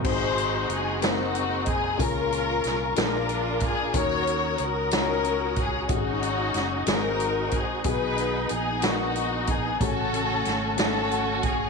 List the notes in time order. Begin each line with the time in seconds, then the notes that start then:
0.03 G#1 G#2 C4 D#4 F#4 G4 G#4 D#5 F#5 C6, kick, crash
0.07 D#4 F#4 C5
0.12 G#4
0.38 closed hi-hat
0.69 F#1, closed hi-hat
0.74 G#4
1.01 A#3 C4 D#4 F#4 A#4, snare, closed hi-hat
1.05 C4 F#4
1.35 closed hi-hat
1.66 G#4, kick, closed hi-hat
1.98 C#2 A#2 C#4 F4 G#4 A#4 F5 G#5 C#6, kick, closed hi-hat
2.02 A#4
2.32 closed hi-hat
2.64 C2, snare, closed hi-hat
2.95 A#1 A#2 D4 F4 G#4 A#4 F5 D6, snare, closed hi-hat
3.00 A#4
3.29 closed hi-hat
3.60 kick, closed hi-hat
3.65 G#4
3.94 D#2 D#3 C#4 D#4 F#4 A#4 C#5 F#5 A#5 D#6, kick, closed hi-hat
3.98 C#5
4.27 closed hi-hat
4.58 C#2, closed hi-hat
4.63 A#4
4.91 C#4 D#4 F4 C#5, snare, closed hi-hat
4.96 C#4 F#4 A#4
5.24 closed hi-hat
5.56 kick, closed hi-hat
5.61 G#4
5.88 G#1 G#2 C#4 D#4 F#4 G4 G#5, kick, closed hi-hat
5.93 C#4 G#4
6.23 closed hi-hat
6.54 F#1, snare, closed hi-hat
6.86 G#1 G#2 C4 D#4 F#4 G#4 C5, snare, closed hi-hat
6.91 F#4 A#4
7.20 closed hi-hat
7.51 G#4, kick, closed hi-hat
7.84 B1 D#3 B3 D#4 F#4 G#4 G#5 D#6, kick, closed hi-hat
7.88 D#4 G#4 B4
8.18 closed hi-hat
8.49 A#1, closed hi-hat
8.55 G#4
8.82 B3 D4 F#4 A#4, snare, closed hi-hat
8.87 D#4
9.16 closed hi-hat
9.47 kick, closed hi-hat
9.51 G#4
9.80 A1 C#3 A3 C#4 F#4 G4 A4 C#6, kick, closed hi-hat
9.88 G#5
10.14 closed hi-hat
10.45 G#1, snare, closed hi-hat
10.77 A3 C#4 F#4 A4, snare, closed hi-hat
10.81 C#4
11.11 closed hi-hat
11.43 G#4, kick, closed hi-hat